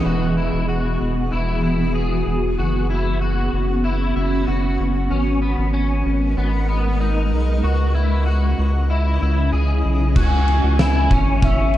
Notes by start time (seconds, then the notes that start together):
Already playing: E3 G#3 B3 G#4
0.05 E1 E3 B3 F#4 G#4
0.37 E4
0.53 E1
0.68 F#4
1.01 E1
1.32 E1 E4
1.63 E4
1.95 G#4
2.27 E1
2.58 F#1 B3 C#4 F#4
2.90 E4
3.21 F#4
3.53 F#1
3.84 E4
4.16 F#1 E4
4.47 F#1 F#4
4.80 F#1
5.10 G#1 G#3 C#4 A#4 B4 D#5
5.42 B3
5.58 G#1
5.73 C#4
6.06 G#1
6.37 G#1 B3
6.69 B3
7.00 D#4
7.32 B1
7.63 C#2 C#3 C#4 E4 F#4
7.94 E4
8.26 F#4
8.59 C#2
8.90 E4
9.22 C#2 E4
9.52 C#2 G#4
9.85 B1
10.16 C#2 C#3 G#3 B3 E4 F#4 G#5, kick, crash
10.48 ride
10.64 C#2
10.79 E4, snare, ride, tambourine
11.10 G#1 C#4, kick, ride
11.42 C#4 E5, kick, ride
11.74 ride